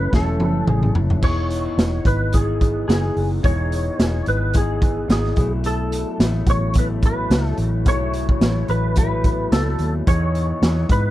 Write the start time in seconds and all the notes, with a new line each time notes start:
Already playing: E3 A3 C#4 B4
0.11 E1 F#2 E3 A4, kick, snare
0.15 A3 C#4
0.40 F#1, high tom
0.67 A1 G#4, mid tom
0.83 mid tom
0.95 F#1, floor tom
1.10 floor tom
1.22 E1 E3 B3 C#5, kick, crash
1.26 D#4 G#4
1.50 closed hi-hat
1.78 E1, snare, closed hi-hat
2.05 G#1 B4, kick, closed hi-hat
2.33 E3 B3 D#4 G#4, kick, closed hi-hat
2.61 kick, closed hi-hat
2.88 F#1 E3 B3 D#4 G#4, snare, closed hi-hat
3.16 F#1, open hi-hat
3.43 E1 E3 B3 D#4 G#4 C#5, kick, closed hi-hat
3.72 closed hi-hat
3.99 E1 E3 B3 D#4 G#4, snare, closed hi-hat
4.26 G#1 B4, closed hi-hat
4.53 E3 B3 D#4 G#4, kick, closed hi-hat
4.82 kick, closed hi-hat
5.08 G#1 E3 B3 D#4 G#4, snare, closed hi-hat
5.13 G#4
5.25 snare
5.36 B1 B2 F#3 A3 E4, kick, closed hi-hat
5.64 A4, closed hi-hat
5.92 closed hi-hat
6.19 A1 B2 F#3 A3 E4, snare, closed hi-hat
6.46 A1 C#5, kick, closed hi-hat
6.74 B2 F#3 A3, kick, closed hi-hat
6.78 E4 B4
7.02 B4, kick, closed hi-hat
7.30 C#2 B2 F#3 A3, snare, closed hi-hat
7.35 E4
7.46 snare
7.57 A1, closed hi-hat
7.85 B1 B2 F#3 A3 E4 C#5, kick, closed hi-hat
8.13 closed hi-hat
8.29 kick
8.41 A1 B2 F#3 A3, snare, closed hi-hat
8.45 E4
8.68 A1 B4, closed hi-hat
8.96 B2 F#3 A3 B4, kick, closed hi-hat
9.00 E4
9.24 kick, closed hi-hat
9.52 C#2 B2 F#3 A3 E4 A4, snare, closed hi-hat
9.79 D#2, closed hi-hat
10.07 E2 E3 B3 D#4 G#4 C#5, kick, closed hi-hat
10.35 closed hi-hat
10.62 E2 E3 B3 D#4 G#4, snare, closed hi-hat
10.89 G#2 B4, kick, closed hi-hat